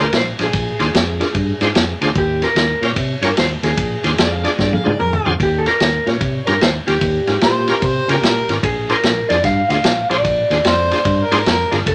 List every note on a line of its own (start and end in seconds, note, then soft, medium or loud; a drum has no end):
0.02 0.15 A#4 medium
0.13 0.30 A#1 medium
0.13 0.22 C5 medium
0.13 snare medium
0.13 ride medium
0.39 0.49 A#1 medium
0.39 0.46 D4 medium
0.39 0.47 F4 medium
0.39 0.47 G#4 medium
0.39 0.47 C5 medium
0.39 snare soft
0.39 ride medium
0.43 2.00 G#4 medium
0.53 0.70 A#1 medium
0.53 kick loud
0.53 ride medium
0.79 0.89 D#2 medium
0.79 0.87 D4 medium
0.79 0.87 F4 medium
0.79 0.87 G#4 medium
0.79 0.88 C5 medium
0.79 snare soft
0.79 ride medium
0.94 1.21 F2 medium
0.94 snare loud
0.94 ride medium
1.20 1.28 D4 medium
1.20 1.28 F4 medium
1.20 1.28 G#4 medium
1.20 1.28 A#4 medium
1.20 snare soft
1.20 ride medium
1.34 1.51 G2 medium
1.34 kick medium
1.34 ride medium
1.61 1.70 G#2 medium
1.61 1.68 D4 medium
1.61 1.69 F4 medium
1.61 1.69 G#4 medium
1.61 1.69 C5 loud
1.61 snare soft
1.61 ride medium
1.75 1.92 F2 medium
1.75 snare loud
1.75 ride medium
2.01 2.11 D2 medium
2.01 2.09 D4 medium
2.01 2.09 F4 medium
2.01 2.09 G#4 medium
2.01 2.09 C5 medium
2.01 snare soft
2.01 ride medium
2.15 2.42 D#2 medium
2.15 2.44 G4 medium
2.15 kick loud
2.15 ride medium
2.42 2.49 C#4 medium
2.42 2.49 F4 medium
2.42 2.50 G4 medium
2.42 2.50 A#4 medium
2.42 2.81 A#4 medium
2.42 snare soft
2.42 ride medium
2.55 2.72 D#2 medium
2.55 snare medium
2.55 ride medium
2.81 2.91 A#2 medium
2.81 2.90 C#4 medium
2.81 2.90 F4 medium
2.81 2.90 G4 medium
2.81 2.90 A#4 medium
2.81 snare soft
2.81 ride medium
2.85 3.24 C#5 medium
2.96 3.13 C3 loud
2.96 kick medium
2.96 ride medium
3.21 3.31 G2 medium
3.21 3.30 C#4 medium
3.21 3.30 F4 medium
3.21 3.30 G4 medium
3.21 3.30 A#4 medium
3.21 3.30 C#5 medium
3.21 snare soft
3.21 ride medium
3.37 3.54 D#2 medium
3.37 3.44 C5 medium
3.37 snare loud
3.37 ride medium
3.63 3.72 D#2 medium
3.63 3.71 C#4 medium
3.63 3.71 F4 medium
3.63 3.71 G4 medium
3.63 5.22 G#4 medium
3.63 3.71 A#4 medium
3.63 snare soft
3.63 ride medium
3.77 3.95 A#1 medium
3.77 kick loud
3.77 ride medium
4.03 4.13 D#2 medium
4.03 4.11 D4 medium
4.03 4.11 F4 medium
4.03 4.11 G#4 medium
4.03 4.11 C5 medium
4.03 snare soft
4.03 ride medium
4.18 4.45 F2 medium
4.18 4.35 D5 medium
4.18 snare loud
4.18 ride medium
4.33 4.47 F5 medium
4.44 4.51 D4 medium
4.44 4.51 F4 medium
4.44 4.51 G#4 medium
4.44 4.52 D5 medium
4.44 4.59 D5 medium
4.44 snare soft
4.44 ride medium
4.59 4.76 G2 medium
4.59 4.75 D5 medium
4.59 kick loud
4.59 snare medium
4.73 4.88 F5 medium
4.73 high tom medium
4.84 4.95 G#2 medium
4.84 4.92 D4 medium
4.84 4.92 F4 medium
4.84 4.92 G#4 medium
4.84 4.92 C5 medium
4.84 4.99 D5 medium
4.84 mid tom medium
4.99 5.16 F2 medium
4.99 5.32 A#4 medium
4.99 mid tom medium
5.13 floor tom medium
5.25 5.35 F2 medium
5.25 5.33 D4 medium
5.25 5.33 F4 medium
5.25 5.33 G#4 medium
5.25 5.33 C5 medium
5.25 floor tom medium
5.40 5.66 D#2 medium
5.40 5.59 G4 medium
5.40 kick loud
5.40 ride medium
5.58 5.67 A4 medium
5.66 5.73 C#4 medium
5.66 5.73 F4 medium
5.66 5.73 G4 medium
5.66 5.74 A#4 medium
5.66 6.08 A#4 medium
5.66 snare soft
5.66 ride medium
5.80 5.97 D#2 medium
5.80 snare loud
5.80 ride medium
6.06 6.16 A#2 medium
6.06 6.13 C#4 medium
6.06 6.14 F4 medium
6.06 6.14 G4 medium
6.06 6.14 A#4 medium
6.06 6.45 C#5 medium
6.06 snare soft
6.06 ride medium
6.21 6.38 C3 medium
6.21 kick loud
6.21 ride medium
6.47 6.57 G2 medium
6.47 6.54 C#4 medium
6.47 6.54 F4 medium
6.47 6.54 G4 medium
6.47 6.62 A#4 medium
6.47 6.54 A#4 medium
6.47 snare soft
6.47 ride medium
6.61 6.78 D#2 medium
6.61 6.68 C5 medium
6.61 snare loud
6.61 ride medium
6.87 6.97 D#2 medium
6.87 6.94 C#4 medium
6.87 6.94 F4 medium
6.87 8.45 G4 medium
6.87 6.95 G4 medium
6.87 6.95 A#4 medium
6.87 snare soft
6.87 ride medium
7.01 7.18 D#2 medium
7.01 kick medium
7.01 ride medium
7.27 7.37 G#2 medium
7.27 7.35 C#4 medium
7.27 7.35 F4 medium
7.27 7.35 G4 medium
7.27 7.35 A#4 medium
7.27 snare soft
7.27 ride medium
7.41 7.68 A#2 medium
7.41 7.68 C5 medium
7.41 snare loud
7.41 ride medium
7.68 7.75 C#4 medium
7.68 7.75 F4 medium
7.68 7.76 G4 medium
7.68 7.76 A#4 medium
7.68 7.86 A#4 medium
7.68 snare soft
7.68 ride medium
7.82 7.99 C3 medium
7.82 8.12 C5 medium
7.82 kick loud
7.82 ride medium
8.08 8.18 C#3 medium
8.08 8.16 C#4 medium
8.08 8.16 F4 medium
8.08 8.16 G4 medium
8.08 8.16 A#4 medium
8.08 8.23 A#4 medium
8.08 snare soft
8.08 ride medium
8.22 8.39 A#2 medium
8.22 snare loud
8.22 ride medium
8.26 8.57 A#4 medium
8.48 8.58 G#1 medium
8.48 8.56 C#4 medium
8.48 8.56 F4 medium
8.48 8.56 G4 medium
8.48 8.57 A#4 medium
8.48 snare soft
8.48 ride medium
8.63 8.89 A#1 medium
8.63 8.91 G#4 loud
8.63 kick loud
8.63 ride medium
8.89 8.97 D4 medium
8.89 8.97 F4 medium
8.89 8.97 G#4 medium
8.89 9.29 A#4 medium
8.89 8.97 C5 medium
8.89 snare soft
8.89 ride medium
9.03 9.20 A#1 medium
9.03 snare loud
9.03 ride medium
9.29 9.39 F2 medium
9.29 9.37 D4 medium
9.29 9.37 F4 medium
9.29 9.37 G#4 medium
9.29 9.37 C5 medium
9.29 9.44 D5 loud
9.29 snare soft
9.29 ride medium
9.44 9.61 G2 loud
9.44 9.69 F5 loud
9.44 kick loud
9.44 snare soft
9.44 ride medium
9.69 9.79 D2 medium
9.69 9.77 D4 medium
9.69 9.77 F4 medium
9.69 9.77 G#4 medium
9.69 9.78 C5 medium
9.69 10.10 F5 loud
9.69 snare soft
9.69 ride medium
9.84 10.01 A#1 medium
9.84 snare loud
9.84 ride medium
10.10 10.20 A#1 medium
10.10 10.17 D4 medium
10.10 10.18 F4 medium
10.10 10.18 G#4 medium
10.10 10.18 C5 medium
10.10 11.42 D5 medium
10.10 snare soft
10.10 ride medium
10.25 10.42 A#1 medium
10.25 kick loud
10.25 ride medium
10.50 10.60 D#2 medium
10.50 10.58 D4 medium
10.50 10.58 F4 medium
10.50 10.58 G#4 medium
10.50 10.58 C5 medium
10.50 snare soft
10.50 ride medium
10.65 10.91 F2 medium
10.65 11.25 C5 medium
10.65 snare medium
10.65 ride medium
10.91 10.99 D4 medium
10.91 10.99 F4 medium
10.91 10.99 G#4 medium
10.91 10.99 C5 medium
10.91 snare soft
10.91 ride medium
11.05 11.22 G2 medium
11.05 kick loud
11.05 ride medium
11.23 11.34 A#4 medium
11.31 11.41 G#2 medium
11.31 11.39 D4 medium
11.31 11.39 F4 medium
11.31 11.39 G#4 medium
11.31 11.39 C5 medium
11.31 snare soft
11.31 ride medium
11.36 11.48 A#4 medium
11.46 11.63 F2 medium
11.46 11.74 A#4 medium
11.46 snare loud
11.46 ride medium
11.71 11.81 G1 medium
11.71 11.79 D4 medium
11.71 11.79 F4 medium
11.71 11.80 G#4 medium
11.71 11.80 A#4 medium
11.71 snare soft
11.71 ride medium
11.86 11.95 F1 medium
11.86 11.95 A4 medium
11.86 kick loud
11.86 ride medium